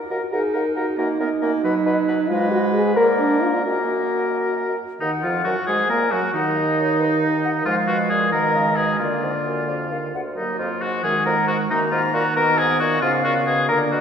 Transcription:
0.10 0.21 D#2 medium
0.10 0.34 F#4 medium
0.10 0.21 A#4 soft
0.10 0.16 F#5 soft
0.32 0.43 D#2 medium
0.32 0.99 D#4 medium
0.32 0.56 G#4 medium
0.32 0.42 A#4 soft
0.32 0.39 F#5 medium
0.53 0.64 D#2 medium
0.53 0.63 A#4 soft
0.53 0.76 A#4 medium
0.53 0.61 F#5 soft
0.75 0.86 D#2 medium
0.75 0.97 F#4 medium
0.75 0.86 A#4 medium
0.75 0.81 F#5 medium
0.98 1.08 F#2 medium
0.98 1.19 A#3 medium
0.98 2.31 D#4 medium
0.98 1.08 A#4 medium
0.98 1.04 D#5 medium
1.20 1.30 F#2 medium
1.20 1.30 B3 medium
1.20 1.30 A#4 medium
1.20 1.27 D#5 soft
1.41 1.52 F#2 medium
1.41 1.63 A#3 medium
1.41 1.51 A#4 medium
1.41 1.47 D#5 medium
1.64 1.74 B2 medium
1.64 2.32 F#3 medium
1.64 1.74 B4 medium
1.64 1.70 D#5 medium
1.85 1.96 B2 medium
1.85 1.96 B4 medium
1.85 1.91 D#5 medium
2.08 2.18 B2 medium
2.08 2.18 B4 medium
2.08 2.14 D#5 medium
2.29 3.62 G#2 medium
2.29 2.96 G#3 medium
2.29 2.51 F4 loud
2.29 2.98 B4 medium
2.29 2.99 D#5 medium
2.51 2.61 F#4 loud
2.73 2.96 G#4 loud
2.96 3.64 A#3 medium
2.96 3.64 A#4 medium
2.96 3.07 A#4 loud
2.96 3.65 D5 medium
3.20 3.44 D4 medium
3.43 3.65 F4 medium
3.64 4.76 F#2 medium
3.64 4.65 A#3 medium
3.64 4.77 F#4 medium
3.64 4.76 A#4 medium
3.64 4.77 D#5 medium
5.00 5.11 D#2 medium
5.00 5.25 D#3 medium
5.00 5.11 D#4 medium
5.00 5.22 D#4 medium
5.00 5.71 F#5 medium
5.22 5.46 F2 medium
5.22 5.44 F3 medium
5.22 5.44 F4 medium
5.22 5.34 F4 medium
5.44 5.56 F#2 medium
5.44 5.55 F#3 medium
5.44 5.66 F#4 medium
5.44 5.68 F#4 medium
5.67 5.92 G#2 medium
5.67 5.89 G#3 medium
5.67 5.89 G#4 medium
5.67 5.92 G#4 medium
5.67 6.34 G#5 medium
5.89 6.12 A#2 medium
5.89 6.13 A#3 medium
5.89 6.13 A#4 medium
5.89 6.12 A#4 medium
6.11 6.22 F#2 medium
6.11 6.33 F#3 medium
6.11 6.33 F#4 medium
6.11 6.34 F#4 medium
6.34 7.63 D#2 medium
6.34 7.63 D#3 medium
6.34 7.63 D#4 medium
6.34 6.58 F#5 medium
6.57 6.77 D#5 medium
6.78 6.99 C#5 medium
7.00 7.06 B4 medium
7.22 7.28 D#5 medium
7.44 7.50 F#5 medium
7.65 7.76 G#2 medium
7.65 8.33 F3 medium
7.65 8.28 G#3 medium
7.65 7.76 F4 medium
7.65 8.31 F5 medium
7.88 8.11 B2 medium
7.88 7.97 F#4 medium
8.10 8.32 A#2 medium
8.10 8.31 G#4 medium
8.32 8.54 B2 medium
8.32 8.98 D#3 medium
8.32 9.01 G#3 medium
8.32 8.78 A#4 medium
8.32 9.03 D#5 medium
8.55 8.76 C#3 medium
8.76 9.01 B2 soft
8.76 8.99 G#4 medium
8.99 9.22 A#2 medium
8.99 10.11 D3 soft
8.99 10.13 A#3 medium
8.99 10.11 F4 medium
8.99 9.64 D5 medium
9.23 9.33 G#2 soft
9.45 9.70 F#2 soft
9.68 9.93 F2 medium
9.68 9.74 D5 medium
9.91 10.13 D#2 soft
9.91 9.97 F5 medium
10.14 10.38 D2 soft
10.14 10.21 F#5 medium
10.36 10.58 D#2 medium
10.36 11.05 F#3 soft
10.36 11.00 A#3 medium
10.36 10.57 D#4 medium
10.59 10.69 F2 soft
10.59 10.83 F4 medium
10.81 11.03 G#2 medium
10.81 11.03 F#4 medium
11.03 11.14 F#2 medium
11.03 11.69 D#3 medium
11.03 11.72 G#3 medium
11.03 11.25 G#4 medium
11.03 11.66 F#5 medium
11.26 11.36 F2 medium
11.26 11.47 A#4 medium
11.48 11.58 G#2 medium
11.48 11.58 F#4 medium
11.70 11.91 F#2 medium
11.70 13.04 D#3 medium
11.70 12.38 A#3 medium
11.70 11.80 D#4 medium
11.70 12.35 A#5 medium
11.91 12.13 G#2 medium
11.91 12.01 F4 medium
12.14 12.24 A#2 medium
12.14 12.36 F#4 medium
12.36 12.60 B2 medium
12.36 13.02 B3 medium
12.36 12.60 A#4 loud
12.36 13.01 D#5 medium
12.58 12.82 G#2 medium
12.58 12.79 G#4 loud
12.80 13.02 A#2 medium
12.80 13.01 F#4 loud
13.02 13.24 G#2 medium
13.02 13.71 C#3 medium
13.02 13.71 B3 medium
13.02 13.12 F4 loud
13.02 13.70 F5 medium
13.24 13.48 A#2 medium
13.24 13.34 F#4 medium
13.46 13.69 B2 medium
13.46 13.68 G#4 medium
13.69 13.92 A#2 medium
13.69 14.01 D3 medium
13.69 14.01 A#3 medium
13.69 13.79 A#4 loud
13.69 14.01 D5 medium
13.92 14.01 B2 medium
13.92 14.01 F#4 medium

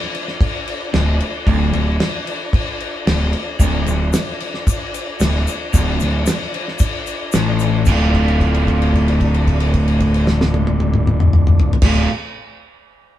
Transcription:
0.00 0.20 D4 loud
0.00 3.57 D4 medium
0.00 3.57 F4 medium
0.00 3.57 A4 medium
0.00 3.56 D5 medium
0.15 crash medium
0.28 snare soft
0.41 kick loud
0.41 crash medium
0.68 crash medium
0.93 1.19 D1 medium
0.93 1.15 D2 medium
0.93 snare loud
0.93 crash medium
1.20 crash medium
1.47 1.72 D1 loud
1.47 1.73 D2 loud
1.47 kick loud
1.47 crash medium
1.73 1.98 D1 medium
1.73 1.96 D2 medium
1.73 crash medium
2.00 snare loud
2.00 crash medium
2.27 crash medium
2.53 kick loud
2.53 crash medium
2.80 crash medium
3.07 3.32 D1 medium
3.07 3.28 D2 medium
3.07 snare loud
3.07 crash medium
3.33 crash medium
3.59 3.85 D1 loud
3.59 3.86 D2 loud
3.59 7.83 D4 medium
3.59 7.83 F4 medium
3.59 7.83 A4 medium
3.59 7.83 D5 medium
3.59 kick loud
3.59 crash medium
3.59 shaker loud
3.86 4.12 D1 medium
3.86 4.09 D2 medium
3.86 crash medium
3.86 shaker medium
4.13 snare loud
4.13 crash medium
4.13 shaker loud
4.40 crash medium
4.54 snare soft
4.67 kick loud
4.67 crash medium
4.67 shaker medium
4.94 crash medium
4.94 shaker medium
5.20 5.45 D1 medium
5.20 5.42 D2 medium
5.20 snare loud
5.20 crash medium
5.20 shaker medium
5.47 crash medium
5.47 shaker medium
5.73 5.98 D1 loud
5.73 5.99 D2 loud
5.73 kick loud
5.73 crash medium
5.73 shaker loud
6.00 6.26 D1 medium
6.00 6.22 D2 medium
6.00 crash medium
6.00 shaker medium
6.26 snare loud
6.26 crash medium
6.26 shaker loud
6.54 crash medium
6.68 snare soft
6.79 kick loud
6.79 crash medium
6.79 shaker medium
7.06 crash medium
7.06 shaker medium
7.32 7.84 A1 loud
7.32 7.86 A2 loud
7.32 snare loud
7.32 crash medium
7.32 shaker loud
7.59 crash medium
7.59 shaker medium
7.86 11.72 D1 loud
7.86 11.76 D2 medium
7.86 11.77 A2 medium
7.86 11.77 D3 medium
7.86 11.72 D4 medium
7.86 11.72 F4 medium
7.86 11.72 A4 medium
7.86 11.72 D5 medium
7.86 kick loud
7.86 crash medium
7.86 shaker medium
7.90 11.77 A3 loud
7.90 11.78 F4 loud
8.14 kick medium
8.14 crash soft
8.28 crash soft
8.40 kick medium
8.40 crash soft
8.55 crash soft
8.67 kick medium
8.67 crash soft
8.82 crash soft
8.94 kick medium
8.94 crash medium
9.08 crash soft
9.21 kick medium
9.21 crash soft
9.34 crash soft
9.47 kick medium
9.47 crash medium
9.60 crash medium
9.74 kick medium
9.74 crash medium
9.88 crash medium
10.00 kick medium
10.00 crash medium
10.14 crash medium
10.27 snare medium
10.41 snare medium
10.54 high tom loud
10.67 high tom medium
10.80 high tom loud
10.94 mid tom medium
11.07 mid tom loud
11.20 mid tom medium
11.33 mid tom loud
11.47 mid tom loud
11.60 floor tom loud
11.73 floor tom loud
11.82 12.05 D1 medium
11.82 12.07 D2 loud
11.82 12.08 A2 loud
11.82 12.08 D3 loud
11.82 12.08 A3 loud
11.82 12.06 D4 medium
11.82 12.07 F4 medium
11.82 12.07 A4 medium
11.82 12.07 D5 medium
11.82 kick loud
11.82 snare loud
11.82 crash loud
11.87 12.09 F4 loud

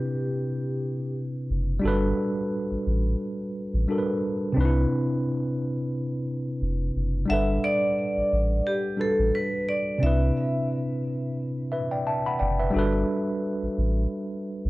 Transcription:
0.00 1.78 C3 medium
0.00 1.79 C4 medium
0.00 1.80 D4 medium
0.00 1.81 E4 medium
0.00 1.12 G4 medium
0.00 1.82 B4 medium
1.50 1.79 F#1 loud
1.80 3.82 G3 medium
1.80 3.83 D4 medium
1.84 2.13 G1 loud
1.84 3.84 F#4 medium
1.84 3.85 A4 medium
1.84 3.86 B4 medium
2.71 2.77 A1 soft
2.86 3.16 A1 medium
3.73 3.86 A1 medium
3.88 4.56 G3 medium
3.88 4.55 D4 medium
3.88 4.57 F#4 soft
3.88 4.58 A4 medium
3.92 3.97 A#4 soft
3.98 4.59 B4 medium
4.52 7.23 C3 medium
4.52 7.24 C4 medium
4.52 7.25 D4 medium
4.57 4.86 C2 loud
4.57 4.64 D#4 medium
4.57 7.27 B4 medium
4.65 7.29 E4 medium
6.62 6.91 F1 loud
6.96 7.25 F#1 medium
7.26 8.94 G3 medium
7.26 8.95 D4 medium
7.26 8.96 F#5 medium
7.30 7.59 G1 loud
7.30 8.97 A4 medium
7.30 8.98 B4 medium
7.30 7.65 E5 medium
7.64 8.69 D5 loud
8.17 8.23 A1 soft
8.32 8.61 A1 medium
8.67 8.98 G4 medium
8.97 10.00 G3 soft
8.97 10.01 D4 soft
8.97 10.01 F#4 soft
8.97 10.02 A4 soft
8.97 10.02 B4 soft
9.01 9.35 A4 medium
9.19 9.32 A1 medium
9.35 9.69 B4 medium
9.69 10.03 D5 medium
9.98 12.69 C3 medium
9.98 12.70 C4 medium
9.98 12.71 D4 medium
10.02 10.31 C2 loud
10.02 12.72 E4 medium
10.02 10.66 E5 medium
10.06 11.71 B4 medium
11.72 11.90 B4 soft
11.72 11.90 E5 medium
11.91 12.06 D5 soft
11.91 12.06 G5 medium
12.07 12.25 E5 soft
12.07 12.24 A5 medium
12.26 12.41 F#5 medium
12.26 12.40 B5 medium
12.39 12.70 F#1 loud
12.39 12.58 D5 soft
12.39 12.58 G5 medium
12.59 12.77 B4 soft
12.59 12.92 E5 medium
12.70 14.70 G3 medium
12.70 14.70 D4 medium
12.70 14.70 F#4 medium
12.75 13.04 G1 loud
12.75 14.70 A4 medium
12.75 14.70 B4 medium
13.62 13.68 A1 medium
13.78 14.07 A1 medium
14.65 14.70 A1 medium

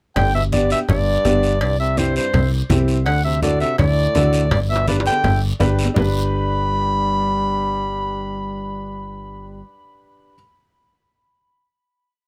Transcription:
0.16 0.74 G1 loud
0.16 0.33 D3 medium
0.16 0.33 G5 loud
0.16 cowbell loud
0.16 high conga soft
0.16 low conga medium
0.16 long guiro medium
0.34 0.43 B2 medium
0.34 0.43 E5 medium
0.52 0.70 G2 medium
0.52 0.78 B3 medium
0.52 0.78 D4 medium
0.52 0.78 G4 medium
0.52 0.70 D5 medium
0.52 high conga medium
0.52 short guiro medium
0.70 0.79 B2 medium
0.70 0.80 E5 loud
0.70 short guiro medium
0.89 1.18 G1 medium
0.89 1.57 G2 medium
0.89 1.58 D5 medium
0.89 cowbell medium
0.89 high conga soft
0.89 low conga medium
0.89 long guiro medium
1.25 1.63 G1 medium
1.25 1.50 B3 medium
1.25 1.50 D4 medium
1.25 1.51 G4 medium
1.25 high conga medium
1.25 low timbale medium
1.25 short guiro medium
1.43 short guiro medium
1.61 2.19 C2 loud
1.61 1.79 G2 medium
1.61 1.79 D5 medium
1.61 cowbell loud
1.61 high conga soft
1.61 long guiro medium
1.80 1.99 C3 medium
1.80 2.00 E5 medium
1.97 2.16 G2 medium
1.97 2.23 C4 medium
1.97 2.23 E4 medium
1.97 2.23 G4 medium
1.97 2.16 C5 medium
1.97 high conga medium
1.97 short guiro medium
2.16 2.50 G2 medium
2.16 2.50 C5 medium
2.16 short guiro medium
2.34 2.63 C2 loud
2.34 cowbell medium
2.34 high conga soft
2.34 low conga medium
2.34 long guiro medium
2.70 3.08 C2 medium
2.70 2.95 C4 medium
2.70 2.95 E4 medium
2.70 2.96 G4 medium
2.70 high conga medium
2.70 low conga medium
2.70 low timbale medium
2.70 short guiro medium
2.88 short guiro medium
3.06 3.64 D2 loud
3.06 3.23 D3 medium
3.06 3.23 F#5 medium
3.06 cowbell loud
3.06 high conga soft
3.06 long guiro medium
3.24 3.41 C3 medium
3.24 3.41 E5 medium
3.42 3.59 A2 medium
3.42 3.68 D4 medium
3.42 3.68 F#4 medium
3.42 3.68 A4 medium
3.42 3.60 D5 medium
3.42 high conga medium
3.42 short guiro medium
3.60 3.77 C3 medium
3.60 3.77 E5 medium
3.60 short guiro medium
3.78 4.08 D2 loud
3.78 4.47 A2 medium
3.78 4.47 D5 medium
3.78 cowbell medium
3.78 high conga soft
3.78 low conga medium
3.78 long guiro medium
4.15 4.53 D2 medium
4.15 4.40 D4 medium
4.15 4.40 F#4 medium
4.15 4.41 A4 medium
4.15 high conga medium
4.15 low timbale medium
4.15 short guiro medium
4.33 short guiro medium
4.51 5.09 G1 loud
4.51 4.59 G2 medium
4.51 4.60 D5 medium
4.51 cowbell loud
4.51 high conga soft
4.51 low conga medium
4.51 high timbale medium
4.51 long guiro medium
4.70 4.87 B2 medium
4.70 4.87 E5 medium
4.76 high timbale loud
4.87 4.96 G2 medium
4.87 5.13 D4 medium
4.87 5.13 G4 medium
4.87 5.13 B4 medium
4.87 4.96 D5 medium
4.87 high conga medium
4.87 low timbale medium
4.87 short guiro medium
5.00 high timbale medium
5.06 5.40 D3 medium
5.06 5.40 G5 loud
5.06 short guiro medium
5.12 low timbale medium
5.24 5.53 G1 medium
5.24 cowbell medium
5.24 high conga soft
5.24 low conga medium
5.24 low timbale medium
5.24 long guiro medium
5.60 5.89 G1 medium
5.60 5.85 D4 medium
5.60 5.86 G4 medium
5.60 5.86 B4 medium
5.60 high conga medium
5.60 low timbale medium
5.60 short guiro medium
5.79 short guiro medium
5.85 low timbale medium
5.94 9.63 G1 loud
5.94 9.63 G3 medium
5.94 10.32 D4 medium
5.94 10.33 G4 medium
5.94 10.34 B4 medium
5.94 9.63 B5 loud
5.94 low conga loud
5.94 low timbale loud
5.94 long guiro loud

